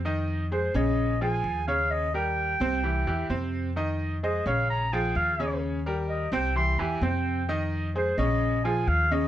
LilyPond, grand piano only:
\new Staff \with { instrumentName = "Grand piano" } { \time 4/4 \key f \minor \tempo 4 = 129 <ees ees' ees''>4 <aes aes' c''>8 <des des' des''>4 <f f' aes'>4 <des des' des''>8~ | <des des' des''>8 <g g' bes'>4 <c c' c''>8 <e e' g'>8 <e e' g'>8 <c c' c''>4 | <ees ees' ees''>4 <aes aes' c''>8 <des des' des''>4 <f f' aes'>4 <des des' des''>8~ | <des des' des''>8 <g g' bes'>4 <c c' c''>8 <e e' g'>8 <e e' g'>8 <c c' c''>4 |
<ees ees' ees''>4 <aes aes' c''>8 <des des' des''>4 <f f' aes'>4 <des des' des''>8 | }